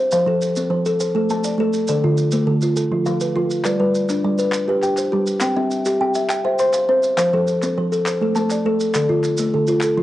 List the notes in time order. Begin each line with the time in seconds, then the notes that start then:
Already playing: C4 C5 F5
0.11 F3 C5 F5, maracas
0.26 F3 A4
0.42 maracas
0.56 C4, maracas
0.70 F3 C5
0.86 A4, maracas
1.00 C5, maracas
1.15 A3 A4
1.30 A3 A5, maracas
1.44 D5, maracas
1.58 A3 A4
1.73 maracas
1.88 D3 A4 D5, maracas
2.04 D3 F4
2.18 maracas
2.32 A3, maracas
2.47 D3 A4
2.62 F4, maracas
2.77 A4, maracas
2.92 F3 F4
3.06 F3 F5, maracas
3.21 B4, maracas
3.36 F3 F4
3.50 maracas
3.64 G3 B4 D5, clap, maracas
3.80 G3 B4
3.95 maracas
4.09 D4, clap, maracas
4.25 G3 D5
4.39 B4, maracas
4.52 clap, maracas
4.68 G4 B4
4.82 G4 G5, clap, maracas
4.97 C5, clap, maracas
5.12 G3 G4
5.27 maracas
5.40 C4 G5, clap, maracas
5.56 C4 E5
5.71 maracas
5.85 G4, clap, maracas
6.01 C4 G5
6.14 E5, maracas
6.29 G5, clap, maracas
6.44 C5 E5
6.58 C5 C6, clap, maracas
6.73 F5, clap, maracas
6.89 C4 C5
7.03 maracas
7.17 F3 C5 F5, clap, maracas
7.33 F3 A4
7.47 maracas
7.62 C4, clap, maracas
7.78 F3 C5
7.92 A4, maracas
8.06 C5, clap, maracas
8.21 A3 A4
8.36 A3 A5, clap, maracas
8.50 D5, clap, maracas
8.66 A3 A4
8.80 maracas
8.94 D3 A4 D5, clap, maracas
9.09 D3 F4
9.24 clap, maracas
9.38 A3, maracas
9.54 D3 A4
9.67 F4, maracas
9.81 A4, clap, maracas
9.97 F3 F4